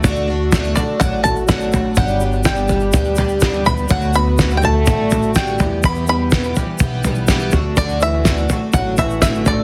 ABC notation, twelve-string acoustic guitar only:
X:1
M:4/4
L:1/8
Q:1/4=124
K:D
V:1 name="Twelve-string acoustic guitar"
[D,A,DF] [A,DF] [D,A,DF] [A,DF] [D,A,DF] [A,DF] [D,A,DF] [A,DF] | [G,,D,G,B,DG] [G,B,DG] [G,,D,G,B,DG] [G,B,DG] [G,B,DG] [G,B,DG] [G,,D,G,B,DG] [B,D] | [D,A,DF] [A,DF] [D,A,DF] [A,DF] [D,A,DF] [A,DF] [D,A,DF] [E,G,B,G] | [E,,B,,E,G,B,G] [E,G,B,G] [E,,B,,E,G,B,G] [E,G,B,G] [E,G,B,G] [E,G,B,G] [E,,B,,E,G,B,G] [A,DF] |
[D,A,DF] [A,DF] [D,A,DF] [A,DF] [D,A,DF] [A,DF] [D,A,DF] [A,DF] |]